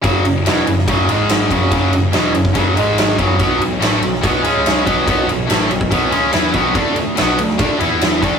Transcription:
<<
  \new Staff \with { instrumentName = "Distorted electric guitar" } { \clef bass \time 4/4 \key fis \minor \tempo 4 = 143 <fis, cis fis>8 <fis, cis>8 <e, b, e>8 <fis, cis>8 <fis, cis fis>8 <gis, dis gis>4 <fis, cis fis>8 | <fis, cis fis>8 <fis, cis>8 <e, b, e>8 <fis, cis>8 <fis, cis fis>8 <gis, dis gis>4 <fis, cis fis>8 | <b, fis b>8 <b, fis>8 <a, e a>8 <b, fis>8 <b, fis b>8 <cis gis cis'>4 <b, fis b>8 | <b, fis b>8 <b, fis>8 <a, e a>8 <b, fis>8 <b, fis b>8 <cis gis cis'>8 <e b e'>8 <b, fis b>8 |
<d a d'>8 <d a>8 <b, fis b>8 <d a>8 <d a d'>8 <e b e'>4 <d a d'>8 | }
  \new Staff \with { instrumentName = "Distorted electric guitar" } { \clef bass \time 4/4 \key fis \minor <fis, cis fis>8 <fis, cis>8 <e, b, e>8 <fis, cis>8 <fis, cis fis>8 <gis, dis gis>4 <fis, cis fis>8 | <fis, cis fis>8 <fis, cis>8 <e, b, e>8 <fis, cis>8 <fis, cis fis>8 <gis, dis gis>4 <fis, cis fis>8 | <b, fis b>8 <b, fis>8 <a, e a>8 <b, fis>8 <b, fis b>8 <cis gis cis'>4 <b, fis b>8 | <b, fis b>8 <b, fis>8 <a, e a>8 <b, fis>8 <b, fis b>8 <cis gis cis'>8 <e b e'>8 <b, fis b>8 |
<d a d'>8 <d a>8 <b, fis b>8 <d a>8 <d a d'>8 <e b e'>4 <d a d'>8 | }
  \new Staff \with { instrumentName = "Picked electric bass" } { \clef bass \time 4/4 \key fis \minor fis,,8 fis,,8 e,,8 fis,,8 fis,,8 gis,,4 fis,,8 | fis,,8 fis,,8 e,,8 fis,,8 fis,,8 gis,,4 fis,,8 | b,,8 b,,8 a,,8 b,,8 b,,8 cis,4 b,,8 | b,,8 b,,8 a,,8 b,,8 b,,8 cis,8 e,8 b,,8 |
d,8 d,8 b,,8 d,8 d,8 e,4 d,8 | }
  \new DrumStaff \with { instrumentName = "Drums" } \drummode { \time 4/4 <bd cymr>8 cymr8 <cymr sn>8 cymr16 sn16 <bd cymr>8 cymr8 <cymr sn>8 <bd cymr>8 | <bd cymr>8 cymr8 <cymr sn>8 cymr16 <bd sn>16 <bd cymr>8 cymr8 <cymr sn>8 <bd cymr>8 | <bd cymr>8 cymr8 <cymr sn>8 cymr16 sn16 <bd cymr>8 cymr8 <cymr sn>8 <bd cymr>8 | <bd cymr>8 cymr8 <cymr sn>8 cymr16 bd16 <bd cymr>8 cymr8 <cymr sn>8 <bd cymr>8 |
<bd cymr>8 cymr8 <cymr sn>8 cymr16 sn16 <bd cymr>8 cymr8 <cymr sn>8 <bd cymr>8 | }
>>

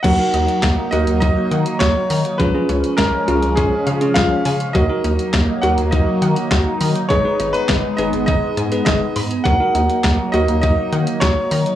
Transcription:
<<
  \new Staff \with { instrumentName = "Grand piano" } { \time 4/4 \key ees \minor \tempo 4 = 102 ges''4. ees''8 ees''4 des''4 | ces''4 bes'4 aes'4 f''4 | ees''4. ges''8 ees''4. r8 | des''8. ces''8. ees''8 ees''4 ees''4 |
ges''4. ees''8 ees''4 des''4 | }
  \new Staff \with { instrumentName = "Tine electric piano" } { \time 4/4 \key ees \minor <ees' ges' bes'>16 <ees' ges' bes'>8. r8 <ees' ges' bes'>4~ <ees' ges' bes'>16 r4 r16 | <des' f' aes'>16 <des' f' aes'>8. r8 <des' f' aes'>8. r8 <des' f' aes'>8. r8 | <ees' ges' bes'>16 <ees' ges' bes'>8. r8 <ees' ges' bes'>4~ <ees' ges' bes'>16 r4 r16 | <ees' aes' ces''>16 <ees' aes' ces''>8. r8 <ees' aes' ces''>8. r8 <ees' aes' ces''>8. r8 |
<ees' ges' bes'>16 <ees' ges' bes'>8. r8 <ees' ges' bes'>4~ <ees' ges' bes'>16 r4 r16 | }
  \new Staff \with { instrumentName = "Synth arpeggio sound" } { \time 4/4 \key ees \minor ges8 ees'8 bes8 ges'8 ees'8 ges''8 ges'8 bes''8 | f8 des'8 aes8 f'8 des'8 f''8 f'8 aes''8 | ges8 ees'8 bes8 ges'8 ees'8 ges''8 ges'8 bes''8 | aes8 ees'8 ces'8 aes'8 ees'8 aes''8 aes'8 ces'''8 |
ges8 ees'8 bes8 ges'8 ees'8 ges''8 ges'8 bes''8 | }
  \new Staff \with { instrumentName = "Analog synth pad" } { \time 4/4 \key ees \minor << { ees'1 | des'1 | ees'1~ | ees'1 |
ees'1 | } \\ { <ges bes>1 | <f aes>1 | <ges bes>1 | <aes ces'>1 |
<ges bes>1 | } >> }
  \new Staff \with { instrumentName = "Analog synth bass" } { \clef bass \time 4/4 \key ees \minor ees,16 r16 ees,16 r16 ees,16 r16 ees,16 ees,16 ees,16 r16 ees16 r16 ees,16 r16 ees16 r16 | des,16 r16 des,16 r16 des,16 r16 des,16 des,16 des,16 r16 des16 r16 des,16 r16 des16 r16 | ees,16 r16 ees,16 r16 ees,16 r16 ees,16 ees,16 ees,16 r16 ees16 r16 ees,16 r16 ees16 r16 | aes,,16 r16 aes,,16 r16 aes,,16 r16 aes,,16 aes,,16 aes,,16 r16 aes,16 r16 aes,,16 r16 aes,16 r16 |
ees,16 r16 ees,16 r16 ees,16 r16 ees,16 ees,16 ees,16 r16 ees16 r16 ees,16 r16 ees16 r16 | }
  \new DrumStaff \with { instrumentName = "Drums" } \drummode { \time 4/4 <cymc hh bd>8 hh16 hh16 <hc hh bd sn>8 hh16 hh16 <hh bd>8 hh16 hh16 <hc hh bd sn>8 hho16 hh16 | <hh bd>8 hh16 hh16 <hc hh bd sn>8 hh16 hh16 <hh bd>8 hh16 hh16 <hc hh bd sn>8 hho16 hh16 | <hh bd>8 hh16 hh16 <hc hh bd sn>8 hh16 hh16 <hh bd>8 hh16 hh16 <hc hh bd sn>8 hho16 hh16 | <hh bd>8 hh16 hh16 <hc hh bd sn>8 hh16 hh16 <hh bd>8 hh16 hh16 <hc hh bd sn>8 hho16 hh16 |
<hh bd>8 hh16 hh16 <hc hh bd sn>8 hh16 hh16 <hh bd>8 hh16 hh16 <hc hh bd sn>8 hho16 hh16 | }
>>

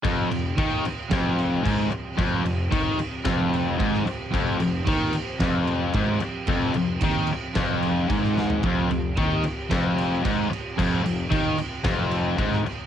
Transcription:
<<
  \new Staff \with { instrumentName = "Analog synth pad" } { \time 4/4 \key f \minor \tempo 4 = 112 <f c' g'>1~ | <f c' g'>1~ | <f c' g'>1~ | <f c' g'>1~ |
<f c' g'>1~ | <f c' g'>1 | }
  \new Staff \with { instrumentName = "Distorted electric guitar" } { \clef bass \time 4/4 \key f \minor f,8 f,8 ees8 r8 f,4 aes,8 r8 | f,8 f,8 ees8 r8 f,4 aes,8 r8 | f,8 f,8 ees8 r8 f,4 aes,8 r8 | f,8 f,8 ees8 r8 f,4 aes,4 |
f,8 f,8 ees8 r8 f,4 aes,8 r8 | f,8 f,8 ees8 r8 f,4 aes,8 r8 | }
  \new Staff \with { instrumentName = "Distorted electric guitar" } { \clef bass \time 4/4 \key f \minor f,8 f,8 ees8 r8 f,4 aes,8 r8 | f,8 f,8 ees8 r8 f,4 aes,8 r8 | f,8 f,8 ees8 r8 f,4 aes,8 r8 | f,8 f,8 ees8 r8 f,4 aes,4 |
f,8 f,8 ees8 r8 f,4 aes,8 r8 | f,8 f,8 ees8 r8 f,4 aes,8 r8 | }
  \new Staff \with { instrumentName = "Overdriven electric guitar" } { \clef bass \time 4/4 \key f \minor f,8 f,8 ees8 r8 f,4 aes,8 r8 | f,8 f,8 ees8 r8 f,4 aes,8 r8 | f,8 f,8 ees8 r8 f,4 aes,8 r8 | f,8 f,8 ees8 r8 f,4 aes,4 |
f,8 f,8 ees8 r8 f,4 aes,8 r8 | f,8 f,8 ees8 r8 f,4 aes,8 r8 | }
  \new Staff \with { instrumentName = "Picked electric bass" } { \clef bass \time 4/4 \key f \minor f,,8 f,,8 ees,8 r8 f,,4 aes,,8 r8 | f,,8 f,,8 ees,8 r8 f,,4 aes,,8 r8 | f,,8 f,,8 ees,8 r8 f,,4 aes,,8 r8 | f,,8 f,,8 ees,8 r8 f,,4 aes,,4 |
f,,8 f,,8 ees,8 r8 f,,4 aes,,8 r8 | f,,8 f,,8 ees,8 r8 f,,4 aes,,8 r8 | }
  \new DrumStaff \with { instrumentName = "Drums" } \drummode { \time 4/4 <cymc bd>8 cymc8 <cymc bd>8 cymc8 <cymc bd sn>8 cymc8 <cymc bd>16 sn16 cymc8 | <cymc bd>8 cymc8 <cymc bd>8 cymc8 <cymc bd sn>8 cymc8 <cymc bd>16 sn16 cymc8 | <cymc bd>8 cymc8 <cymc bd>8 cymc8 <cymc bd sn>8 cymc8 <cymc bd>8 cymc8 | <cymc bd>8 cymc8 <cymc bd>8 cymc8 <cymc bd sn>8 cymc8 <cymc bd>16 sn16 sn16 tomfh16 |
<cymc bd>8 cymc8 <cymc bd>8 cymc8 <cymc bd sn>8 cymc8 <cymc bd>8 cymc8 | <cymc bd>8 cymc8 <cymc bd>8 cymc8 <cymc bd sn>8 cymc8 <cymc bd>16 sn16 cymc8 | }
>>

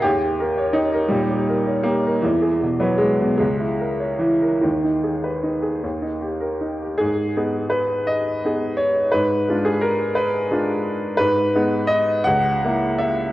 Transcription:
\new Staff \with { instrumentName = "Upright piano" } { \time 6/8 \key gis \minor \tempo 4. = 55 << { g'4 dis'8 g4 ais8 | e8. fis16 gis8 gis4 e8 | dis2~ dis8 r8 | gis'4 b'8 dis''4 cis''8 |
b'8. gis'16 ais'8 b'4. | b'4 dis''8 fis''4 e''8 | } \\ { dis,16 g'16 ais'16 cis''16 g'16 ais'16 ais,16 g'16 ais'16 cis''16 g'16 ais'16 | e,16 gis'16 b,16 b'16 gis'16 b,16 cis,16 e'16 ais'16 cis''16 e'16 ais'16 | dis,16 dis'16 gis'16 b'16 dis'16 gis'16 dis,16 dis'16 g'16 ais'16 dis'16 g'16 | gis,8 <b dis' gis'>4. <b dis' gis'>4 |
gis,8 <gis d' eis'>4. <gis d' eis'>4 | gis,8 <gis b dis'>4 cis,8 <ais e'>4 | } >> }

